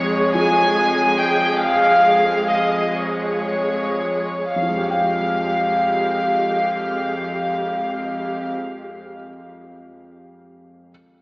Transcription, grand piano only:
0.00 1.56 F2 soft
0.34 4.56 F3 soft
4.56 8.94 F2 soft
4.62 9.00 F3 soft
4.70 9.07 G#3 soft
4.77 9.15 G4 soft
4.84 9.22 F5 soft
4.91 9.29 G5 soft

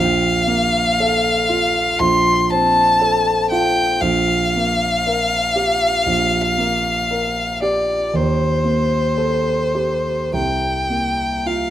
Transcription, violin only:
0.00 2.01 F5 loud
1.99 2.52 C6 loud
2.50 3.50 A5 medium
3.50 4.02 G5 medium
4.01 7.62 F5 loud
7.62 8.17 D5 medium
8.15 10.34 C5 medium
10.35 11.48 G5 medium
11.47 11.70 F5 medium

